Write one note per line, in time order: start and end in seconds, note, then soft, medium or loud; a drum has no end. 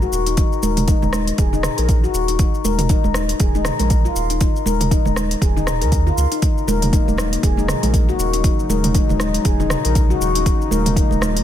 0.02 0.11 F#4 loud
0.02 shaker soft
0.12 0.43 D#1 medium
0.12 shaker medium
0.27 0.37 D#4 medium
0.27 closed hi-hat medium
0.27 shaker soft
0.37 0.51 D#4 medium
0.37 kick loud
0.37 closed hi-hat soft
0.37 shaker medium
0.53 shaker soft
0.63 0.94 D#1 loud
0.63 0.71 A#4 medium
0.63 high conga medium
0.63 shaker medium
0.77 closed hi-hat medium
0.77 mid tom medium
0.77 high conga medium
0.77 shaker soft
0.88 0.96 D#4 loud
0.88 kick loud
0.88 closed hi-hat soft
0.88 shaker medium
1.02 1.32 D#1 medium
1.02 high conga medium
1.02 low conga loud
1.02 shaker soft
1.13 1.21 D#4 medium
1.13 cross-stick medium
1.13 high conga loud
1.13 shaker medium
1.27 closed hi-hat medium
1.27 shaker soft
1.38 1.69 D#1 medium
1.38 1.52 G#4 medium
1.38 kick loud
1.38 closed hi-hat soft
1.38 shaker medium
1.53 1.59 D#4 loud
1.53 low conga medium
1.53 shaker soft
1.63 cross-stick medium
1.63 mid tom medium
1.63 shaker medium
1.78 2.08 A#1 medium
1.78 1.88 A#4 medium
1.78 closed hi-hat medium
1.78 shaker soft
1.89 kick loud
1.89 closed hi-hat soft
1.89 shaker medium
2.04 2.13 F#4 loud
2.04 shaker soft
2.14 2.45 D#1 medium
2.14 shaker medium
2.28 2.38 D#4 medium
2.28 closed hi-hat medium
2.28 shaker soft
2.39 2.53 D#4 medium
2.39 kick loud
2.39 closed hi-hat soft
2.39 shaker medium
2.54 shaker soft
2.64 2.95 D#1 loud
2.64 2.72 A#4 medium
2.64 high conga medium
2.64 shaker medium
2.79 closed hi-hat medium
2.79 mid tom medium
2.79 high conga medium
2.79 shaker soft
2.89 2.98 D#4 loud
2.89 kick loud
2.89 closed hi-hat soft
2.89 shaker medium
3.04 3.34 D#1 medium
3.04 high conga medium
3.04 shaker soft
3.14 3.23 D#4 medium
3.14 cross-stick medium
3.14 high conga medium
3.14 shaker medium
3.29 closed hi-hat medium
3.29 shaker soft
3.40 3.71 D#1 medium
3.40 3.53 G#4 medium
3.40 kick loud
3.40 closed hi-hat soft
3.40 shaker medium
3.55 3.61 D#4 loud
3.55 high conga medium
3.55 shaker soft
3.65 cross-stick medium
3.65 mid tom medium
3.65 low conga loud
3.65 shaker medium
3.79 4.09 A#1 loud
3.79 3.89 A#4 medium
3.79 closed hi-hat soft
3.79 high conga medium
3.79 shaker soft
3.90 kick loud
3.90 closed hi-hat soft
3.90 shaker medium
4.05 4.15 F4 loud
4.05 shaker soft
4.16 4.47 D#1 medium
4.16 shaker medium
4.30 4.40 D#4 medium
4.30 closed hi-hat medium
4.30 shaker soft
4.41 4.54 D#4 medium
4.41 kick loud
4.41 closed hi-hat soft
4.41 shaker medium
4.56 shaker soft
4.66 4.97 D#1 loud
4.66 4.74 A#4 medium
4.66 high conga loud
4.66 shaker medium
4.80 closed hi-hat medium
4.80 mid tom medium
4.80 high conga medium
4.80 shaker soft
4.91 4.99 D#4 loud
4.91 kick loud
4.91 closed hi-hat soft
4.91 shaker medium
5.05 5.35 D#1 medium
5.05 high conga medium
5.05 low conga loud
5.05 shaker soft
5.16 5.24 D#4 medium
5.16 cross-stick medium
5.16 high conga medium
5.16 shaker medium
5.31 closed hi-hat medium
5.31 shaker soft
5.42 5.83 D#1 medium
5.42 5.55 G#4 medium
5.42 kick loud
5.42 closed hi-hat soft
5.42 shaker medium
5.57 5.62 D#4 loud
5.57 low conga medium
5.57 shaker soft
5.67 cross-stick medium
5.67 mid tom medium
5.67 shaker medium
5.81 6.11 D#2 medium
5.81 5.91 A#4 medium
5.81 closed hi-hat medium
5.81 shaker soft
5.92 kick loud
5.92 closed hi-hat soft
5.92 shaker medium
6.07 6.16 F4 medium
6.07 low conga medium
6.07 shaker soft
6.17 6.26 C#2 loud
6.17 shaker medium
6.32 6.41 D#4 medium
6.32 closed hi-hat medium
6.32 shaker soft
6.42 11.44 C#3 medium
6.42 10.42 F#3 medium
6.42 8.42 A#3 medium
6.42 6.56 D#4 medium
6.42 11.44 D#4 medium
6.42 kick loud
6.42 closed hi-hat soft
6.42 shaker soft
6.58 shaker soft
6.68 6.99 D#1 loud
6.68 6.76 A#4 medium
6.68 high conga loud
6.68 shaker medium
6.82 closed hi-hat medium
6.82 mid tom medium
6.82 high conga medium
6.82 shaker soft
6.93 7.01 D#4 loud
6.93 kick loud
6.93 closed hi-hat soft
6.93 shaker medium
7.08 7.37 D#1 medium
7.08 high conga medium
7.08 shaker soft
7.18 7.26 D#4 medium
7.18 cross-stick medium
7.18 high conga medium
7.18 shaker medium
7.33 closed hi-hat medium
7.33 shaker soft
7.43 7.74 D#1 medium
7.43 7.57 G#4 medium
7.43 kick loud
7.43 closed hi-hat soft
7.43 shaker medium
7.57 7.64 D#4 loud
7.57 high conga medium
7.57 shaker soft
7.68 cross-stick medium
7.68 mid tom medium
7.68 low conga medium
7.68 shaker medium
7.83 8.13 A#1 loud
7.83 7.93 A#4 medium
7.83 closed hi-hat medium
7.83 high conga medium
7.83 shaker soft
7.94 kick loud
7.94 closed hi-hat soft
7.94 shaker medium
8.09 8.18 F#4 loud
8.09 shaker soft
8.19 8.50 D#1 medium
8.19 shaker medium
8.33 8.43 D#4 medium
8.33 closed hi-hat medium
8.33 shaker soft
8.44 10.44 G#3 medium
8.44 8.58 D#4 medium
8.44 kick loud
8.44 closed hi-hat soft
8.44 shaker soft
8.60 shaker soft
8.69 9.00 D#1 loud
8.69 8.78 A#4 medium
8.69 high conga medium
8.69 shaker medium
8.84 closed hi-hat medium
8.84 mid tom medium
8.84 high conga medium
8.84 shaker soft
8.95 9.03 D#4 medium
8.95 kick loud
8.95 closed hi-hat soft
8.95 shaker medium
9.09 9.39 D#1 medium
9.09 high conga medium
9.09 low conga medium
9.09 shaker soft
9.20 9.28 D#4 medium
9.20 cross-stick medium
9.20 high conga medium
9.20 shaker medium
9.34 closed hi-hat medium
9.34 shaker soft
9.45 9.76 D#1 medium
9.45 9.58 G#4 medium
9.45 kick loud
9.45 closed hi-hat soft
9.45 shaker medium
9.60 9.66 D#4 loud
9.60 low conga loud
9.60 shaker soft
9.70 cross-stick medium
9.70 mid tom medium
9.70 shaker medium
9.85 10.14 A#1 medium
9.85 9.95 A#4 medium
9.85 closed hi-hat medium
9.85 shaker soft
9.95 kick loud
9.95 closed hi-hat soft
9.95 shaker medium
10.10 10.20 F#4 loud
10.10 shaker soft
10.21 10.52 D#1 medium
10.21 shaker medium
10.35 10.45 D#4 medium
10.35 closed hi-hat medium
10.35 shaker soft
10.46 11.44 F3 medium
10.46 11.44 A#3 medium
10.46 10.59 D#4 medium
10.46 kick loud
10.46 closed hi-hat soft
10.46 shaker soft
10.61 shaker soft
10.71 11.02 D#1 loud
10.71 10.79 A#4 medium
10.71 high conga medium
10.71 shaker medium
10.86 closed hi-hat medium
10.86 mid tom medium
10.86 high conga medium
10.86 shaker soft
10.96 11.04 D#4 loud
10.96 kick loud
10.96 closed hi-hat soft
10.96 shaker soft
11.11 11.40 D#1 medium
11.11 high conga medium
11.11 shaker soft
11.21 11.30 D#4 medium
11.21 cross-stick medium
11.21 high conga medium
11.21 shaker medium
11.37 closed hi-hat medium
11.37 shaker soft